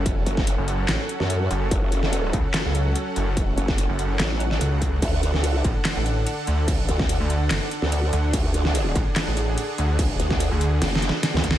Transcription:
0.00 0.25 F#1 loud
0.00 4.98 F#3 medium
0.00 4.98 C#4 medium
0.00 4.98 A4 medium
0.00 11.58 F#5 medium
0.06 kick loud
0.06 closed hi-hat medium
0.26 0.56 F#1 loud
0.26 closed hi-hat medium
0.37 kick loud
0.37 snare soft
0.47 closed hi-hat medium
0.58 0.87 F#1 loud
0.68 closed hi-hat medium
0.89 0.98 A1 loud
0.89 snare loud
0.89 clap loud
0.89 closed hi-hat medium
1.09 closed hi-hat medium
1.20 1.49 F#2 loud
1.20 snare soft
1.30 closed hi-hat medium
1.51 1.70 F#1 loud
1.51 closed hi-hat medium
1.71 2.32 F#1 medium
1.71 kick loud
1.71 closed hi-hat medium
1.92 closed hi-hat medium
2.03 snare soft
2.13 closed hi-hat medium
2.33 2.43 C#2 loud
2.33 kick loud
2.33 closed hi-hat medium
2.54 snare loud
2.54 clap loud
2.54 closed hi-hat medium
2.65 2.94 C#2 loud
2.75 closed hi-hat medium
2.95 closed hi-hat medium
3.16 3.56 F#1 loud
3.16 closed hi-hat medium
3.37 kick loud
3.37 closed hi-hat medium
3.58 3.87 F#1 loud
3.58 closed hi-hat soft
3.68 kick loud
3.68 snare soft
3.78 closed hi-hat medium
3.89 4.18 F#1 loud
3.99 closed hi-hat soft
4.20 4.59 A1 loud
4.20 snare loud
4.20 clap medium
4.20 closed hi-hat medium
4.40 closed hi-hat soft
4.51 snare soft
4.61 5.01 C#2 loud
4.61 closed hi-hat medium
4.82 kick medium
4.82 closed hi-hat medium
5.02 5.45 D2 medium
5.02 11.58 D3 medium
5.02 11.58 D4 medium
5.02 8.30 A4 medium
5.02 kick loud
5.02 closed hi-hat medium
5.02 crash medium
5.23 closed hi-hat medium
5.34 snare soft
5.44 5.63 C#2 medium
5.44 closed hi-hat medium
5.44 crash soft
5.64 5.74 A1 loud
5.64 kick loud
5.64 closed hi-hat soft
5.85 snare loud
5.85 clap medium
5.85 closed hi-hat medium
5.85 crash medium
5.96 6.25 A1 loud
6.06 closed hi-hat soft
6.27 closed hi-hat medium
6.27 crash soft
6.47 6.87 D2 loud
6.47 closed hi-hat medium
6.68 kick loud
6.68 closed hi-hat medium
6.68 crash medium
6.89 7.18 D2 loud
6.89 closed hi-hat medium
6.99 kick loud
6.99 snare soft
7.09 closed hi-hat medium
7.09 crash medium
7.20 7.49 D2 loud
7.30 closed hi-hat medium
7.51 7.60 F#1 loud
7.51 snare loud
7.51 clap medium
7.51 closed hi-hat medium
7.51 crash medium
7.71 closed hi-hat medium
7.82 8.11 D2 loud
7.82 snare soft
7.92 closed hi-hat medium
7.92 crash soft
8.13 8.32 D2 loud
8.13 closed hi-hat medium
8.33 8.94 D2 loud
8.33 11.58 G#4 medium
8.33 kick loud
8.33 closed hi-hat medium
8.33 crash medium
8.54 closed hi-hat medium
8.65 snare soft
8.75 closed hi-hat medium
8.75 crash medium
8.95 9.05 A1 loud
8.95 kick loud
8.95 closed hi-hat medium
9.16 snare loud
9.16 clap medium
9.16 closed hi-hat medium
9.16 crash medium
9.27 9.56 A1 loud
9.37 closed hi-hat medium
9.58 closed hi-hat medium
9.58 crash soft
9.78 10.18 D2 loud
9.78 closed hi-hat medium
9.99 kick loud
9.99 closed hi-hat medium
9.99 crash medium
10.20 10.49 D2 loud
10.20 closed hi-hat medium
10.30 kick loud
10.30 snare soft
10.40 closed hi-hat medium
10.40 crash medium
10.51 10.80 D2 medium
10.61 closed hi-hat medium
10.82 11.11 F#1 loud
10.82 snare medium
10.82 closed hi-hat medium
10.82 crash medium
10.95 snare medium
11.02 closed hi-hat medium
11.09 snare medium
11.23 snare medium
11.23 closed hi-hat medium
11.23 crash soft
11.34 11.42 D2 loud
11.34 snare loud
11.44 11.58 D2 loud
11.44 kick medium
11.44 closed hi-hat medium
11.51 snare loud

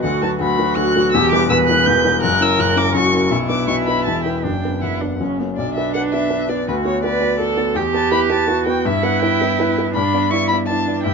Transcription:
0.03 0.22 D2 medium
0.03 0.22 D3 medium
0.03 0.39 F#4 loud
0.03 0.22 F#5 loud
0.22 0.39 F#3 medium
0.22 0.39 F#4 medium
0.22 0.39 B4 medium
0.22 0.30 A5 loud
0.40 0.58 D2 medium
0.40 0.58 D3 medium
0.40 1.16 F#4 loud
0.40 0.77 B5 loud
0.59 0.75 F#3 medium
0.59 0.75 F#4 medium
0.59 0.76 B4 medium
0.76 0.94 D2 medium
0.76 0.94 D3 medium
0.76 1.11 F#6 loud
0.96 1.12 F#3 medium
0.96 1.12 F#4 medium
0.96 1.12 B4 medium
1.12 1.32 E1 medium
1.12 1.32 E2 loud
1.12 1.48 G4 loud
1.12 1.31 E6 loud
1.32 1.48 G3 medium
1.32 1.49 E4 medium
1.32 1.49 B4 medium
1.32 1.49 D6 loud
1.49 1.67 E1 loud
1.49 1.67 E2 medium
1.49 2.21 B4 loud
1.49 1.57 E6 loud
1.68 1.85 G3 medium
1.68 1.85 E4 medium
1.68 1.85 B4 medium
1.68 1.88 F#6 loud
1.86 2.04 E1 medium
1.86 2.04 E2 medium
1.86 2.23 G6 loud
2.05 2.21 G3 medium
2.05 2.21 E4 medium
2.05 2.21 B4 medium
2.22 2.40 F#1 medium
2.22 2.41 F#2 medium
2.22 2.98 A#4 loud
2.22 2.43 F#6 loud
2.40 2.57 C#4 medium
2.40 2.57 E4 medium
2.40 2.57 A#4 medium
2.40 2.62 E6 loud
2.59 2.76 F#1 medium
2.59 2.76 F#2 medium
2.59 2.79 F#6 loud
2.76 2.93 C#4 medium
2.76 2.93 E4 medium
2.76 2.93 A#4 medium
2.76 2.95 D6 loud
2.94 3.12 F#1 medium
2.94 3.12 F#2 medium
2.94 3.33 F#4 loud
2.94 3.31 C#6 loud
3.13 3.29 C#4 medium
3.13 3.30 E4 medium
3.13 3.30 A#4 medium
3.30 3.49 B1 medium
3.30 3.49 B2 medium
3.30 4.46 E4 medium
3.49 3.66 B3 medium
3.49 3.66 D4 medium
3.49 3.66 B4 medium
3.49 3.67 D6 loud
3.68 3.86 B1 medium
3.68 3.86 B2 medium
3.68 3.75 C#6 loud
3.87 4.04 B3 medium
3.87 4.04 D4 medium
3.87 4.05 B4 medium
3.87 4.04 B5 loud
4.05 4.24 E1 medium
4.05 4.24 E2 medium
4.05 4.23 A5 loud
4.23 4.42 B3 medium
4.23 4.42 E4 soft
4.23 4.42 B4 medium
4.23 4.42 G5 medium
4.43 4.62 F#1 medium
4.43 4.62 F#2 medium
4.43 4.79 D4 medium
4.43 4.83 G5 medium
4.65 4.81 B3 soft
4.65 4.81 D4 soft
4.65 4.81 B4 medium
4.82 5.01 F#1 medium
4.82 5.01 F#2 medium
4.82 5.03 E4 medium
4.82 5.20 F#5 medium
5.01 5.18 B3 soft
5.01 5.19 D4 medium
5.01 5.19 D4 soft
5.01 5.19 B4 medium
5.19 5.38 F#1 medium
5.19 5.39 F#2 medium
5.19 5.41 C#4 medium
5.39 5.56 A#3 soft
5.39 5.57 B3 medium
5.39 5.57 C#4 soft
5.39 5.57 C#5 soft
5.57 6.65 B1 medium
5.57 6.64 D4 loud
5.57 5.74 D5 medium
5.75 5.94 B3 medium
5.75 5.94 B4 medium
5.75 5.93 E5 loud
5.94 6.11 D4 medium
5.94 6.11 B4 medium
5.94 6.01 F#5 loud
6.13 6.30 B3 medium
6.13 6.29 B4 medium
6.13 6.51 E5 loud
6.30 6.47 D4 medium
6.30 6.47 B4 medium
6.49 6.66 B3 medium
6.49 6.66 B4 medium
6.49 6.68 D5 loud
6.67 7.74 D2 medium
6.67 7.03 F#4 medium
6.67 6.75 B4 loud
6.85 7.02 B3 medium
6.85 7.02 B4 medium
6.85 7.03 C#5 loud
7.03 7.20 F#4 medium
7.03 7.20 B4 medium
7.03 7.40 B4 loud
7.03 7.57 D5 loud
7.21 7.38 B3 medium
7.21 7.38 B4 medium
7.40 7.57 F#4 medium
7.40 7.78 A4 loud
7.40 7.56 B4 medium
7.57 7.74 B3 medium
7.57 7.74 B4 medium
7.75 8.81 E2 medium
7.75 8.50 G4 loud
7.75 7.83 G5 loud
7.94 8.11 B3 medium
7.94 8.10 B4 medium
7.94 8.11 A5 loud
8.12 8.29 E4 medium
8.12 8.28 B4 medium
8.12 8.19 B5 loud
8.29 8.46 B3 medium
8.29 8.46 B4 medium
8.29 8.66 A5 loud
8.48 8.65 E4 medium
8.48 8.87 F#4 loud
8.48 8.65 B4 medium
8.67 8.83 B3 medium
8.67 8.83 B4 medium
8.67 8.87 G5 loud
8.85 9.90 G2 loud
8.85 9.94 E4 loud
8.85 9.05 E5 loud
9.03 9.20 B3 medium
9.03 9.20 B4 medium
9.03 9.22 F#5 loud
9.22 9.38 E4 medium
9.22 9.38 B4 medium
9.22 9.75 G5 loud
9.41 9.57 B3 medium
9.41 9.57 B4 medium
9.60 9.75 E4 medium
9.60 9.75 B4 medium
9.78 9.93 B3 medium
9.78 9.94 B4 medium
9.94 11.01 G2 medium
9.94 10.32 D4 loud
9.94 10.32 B5 loud
10.14 10.29 B3 medium
10.14 10.30 D5 medium
10.30 10.67 E4 medium
10.30 10.48 E4 medium
10.30 10.48 D5 medium
10.30 10.48 C#6 loud
10.48 10.67 B3 medium
10.48 10.56 B5 loud
10.53 10.67 D5 medium
10.67 11.05 D4 medium
10.67 10.85 E4 medium
10.67 10.85 D5 medium
10.67 11.03 A5 loud
10.88 11.03 B3 medium
10.88 11.03 D5 medium
11.03 11.14 G2 medium
11.03 11.14 E4 medium
11.03 11.14 G5 loud

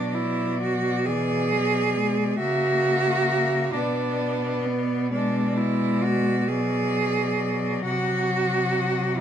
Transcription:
0.00 2.36 B2 medium
0.00 1.08 F#3 medium
0.00 0.17 D4 loud
0.00 0.16 D5 medium
0.15 0.61 E4 loud
0.15 0.38 D5 medium
0.38 0.61 D5 medium
0.61 1.07 F#4 loud
0.61 0.83 D5 medium
0.83 1.06 D5 medium
1.06 1.53 E3 medium
1.06 2.38 G#4 loud
1.06 1.27 D5 medium
1.27 1.50 D5 medium
1.50 1.97 F#3 medium
1.50 1.73 D5 medium
1.73 1.95 D5 medium
1.95 2.39 G#3 medium
1.95 2.17 D5 medium
2.17 2.38 D5 medium
2.39 3.73 C#3 medium
2.39 3.77 A#3 medium
2.39 3.75 F#4 loud
2.39 2.62 E5 medium
2.62 2.85 E5 medium
2.85 3.08 E5 medium
3.08 3.28 E5 medium
3.28 3.53 E5 medium
3.53 3.73 E5 medium
3.73 7.82 B2 medium
3.73 5.13 B3 medium
3.73 4.67 D4 medium
3.73 3.97 D5 medium
3.97 4.19 D5 medium
4.19 4.43 D5 medium
4.43 4.65 D5 medium
4.65 5.12 B3 loud
4.65 4.89 D5 medium
4.89 5.11 D5 medium
5.12 6.52 G#3 medium
5.12 5.59 D4 medium
5.12 5.36 D5 medium
5.36 5.57 D5 medium
5.57 6.04 E4 loud
5.57 5.80 D5 medium
5.80 6.04 D5 medium
6.03 6.50 F#4 loud
6.03 6.28 D5 medium
6.28 6.50 D5 medium
6.48 9.21 F#3 medium
6.48 7.84 G#4 loud
6.48 6.74 D5 medium
6.74 6.96 D5 medium
6.96 7.18 D5 medium
7.18 7.39 D5 medium
7.39 7.62 D5 medium
7.62 7.85 D5 medium
7.85 9.21 C3 medium
7.85 9.21 F#4 loud
7.85 8.07 F#5 medium
8.07 8.30 F#5 medium
8.30 8.51 F#5 soft
8.51 8.74 F#5 medium
8.74 8.98 F#5 medium
8.98 9.21 F#5 medium

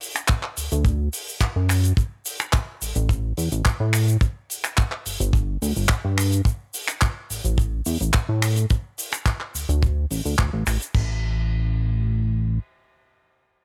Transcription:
0.01 open hi-hat loud
0.01 shaker medium
0.15 finger snap medium
0.15 closed hi-hat medium
0.15 shaker medium
0.28 kick loud
0.28 clap loud
0.28 shaker medium
0.43 clap soft
0.57 0.69 D2 soft
0.57 open hi-hat loud
0.57 shaker medium
0.72 1.09 D2 loud
0.72 closed hi-hat medium
0.72 shaker medium
0.85 kick loud
0.85 closed hi-hat medium
0.85 shaker medium
1.13 open hi-hat loud
1.13 shaker medium
1.27 open hi-hat medium
1.27 shaker medium
1.41 kick loud
1.41 clap loud
1.41 shaker soft
1.56 1.93 F#2 medium
1.69 finger snap medium
1.69 open hi-hat loud
1.69 shaker medium
1.84 closed hi-hat medium
1.84 shaker medium
1.97 kick loud
1.97 closed hi-hat medium
1.97 shaker soft
2.25 open hi-hat loud
2.25 shaker loud
2.40 finger snap medium
2.40 closed hi-hat medium
2.40 shaker medium
2.53 kick loud
2.53 clap loud
2.53 closed hi-hat medium
2.53 shaker medium
2.82 2.93 A1 soft
2.82 open hi-hat loud
2.82 shaker loud
2.95 3.33 A1 medium
2.95 closed hi-hat medium
2.95 shaker medium
3.09 kick loud
3.09 closed hi-hat medium
3.09 shaker medium
3.37 3.49 E2 medium
3.37 open hi-hat loud
3.37 shaker medium
3.52 3.63 A1 medium
3.52 closed hi-hat medium
3.52 shaker medium
3.65 kick loud
3.65 clap loud
3.65 closed hi-hat medium
3.65 shaker soft
3.80 4.17 A2 loud
3.93 finger snap medium
3.93 open hi-hat loud
3.93 shaker medium
4.08 closed hi-hat medium
4.08 shaker medium
4.21 kick loud
4.21 closed hi-hat medium
4.21 shaker medium
4.50 open hi-hat loud
4.50 shaker loud
4.64 finger snap medium
4.64 closed hi-hat medium
4.64 shaker medium
4.77 kick loud
4.77 clap loud
4.77 closed hi-hat medium
4.77 shaker soft
4.92 clap soft
5.06 5.17 G1 soft
5.06 open hi-hat loud
5.06 shaker loud
5.20 5.57 G1 medium
5.20 closed hi-hat medium
5.20 shaker medium
5.33 kick loud
5.33 closed hi-hat medium
5.33 shaker medium
5.62 5.73 D2 medium
5.62 open hi-hat loud
5.62 shaker medium
5.76 5.87 G1 medium
5.76 open hi-hat medium
5.76 shaker medium
5.89 kick loud
5.89 clap loud
5.89 shaker medium
6.04 6.41 G2 medium
6.18 finger snap medium
6.18 open hi-hat loud
6.18 shaker loud
6.32 closed hi-hat medium
6.32 shaker medium
6.45 kick loud
6.45 closed hi-hat medium
6.45 shaker medium
6.74 open hi-hat loud
6.74 shaker loud
6.88 finger snap medium
6.88 closed hi-hat medium
6.88 shaker medium
7.01 kick loud
7.01 clap loud
7.01 closed hi-hat medium
7.01 shaker soft
7.30 7.42 A1 soft
7.30 open hi-hat loud
7.30 shaker loud
7.45 7.81 A1 medium
7.45 closed hi-hat medium
7.45 shaker medium
7.58 kick loud
7.58 closed hi-hat medium
7.58 shaker medium
7.86 7.98 E2 medium
7.86 open hi-hat loud
7.86 shaker medium
8.00 8.11 A1 medium
8.00 closed hi-hat medium
8.00 shaker medium
8.13 kick loud
8.13 clap loud
8.13 closed hi-hat medium
8.13 shaker medium
8.29 8.66 A2 medium
8.42 finger snap medium
8.42 open hi-hat loud
8.42 shaker medium
8.56 closed hi-hat medium
8.56 shaker medium
8.70 kick loud
8.70 closed hi-hat medium
8.70 shaker medium
8.98 open hi-hat loud
8.98 shaker medium
9.12 finger snap medium
9.12 closed hi-hat medium
9.12 shaker medium
9.26 kick loud
9.26 clap loud
9.26 closed hi-hat medium
9.26 shaker medium
9.40 clap soft
9.55 9.66 D2 soft
9.55 open hi-hat loud
9.55 shaker medium
9.69 10.06 D2 loud
9.69 closed hi-hat medium
9.69 shaker medium
9.82 kick loud
9.82 closed hi-hat medium
9.82 shaker medium
10.11 10.22 A1 medium
10.11 open hi-hat loud
10.11 shaker medium
10.25 10.36 D2 medium
10.25 open hi-hat medium
10.25 shaker medium
10.38 10.50 D2 loud
10.38 kick loud
10.38 clap loud
10.38 shaker soft
10.53 10.64 A1 loud
10.67 10.78 A1 loud
10.67 finger snap medium
10.67 open hi-hat loud
10.67 shaker medium
10.80 closed hi-hat medium
10.80 shaker medium
10.94 12.59 A1 loud
10.94 kick loud
10.94 crash medium

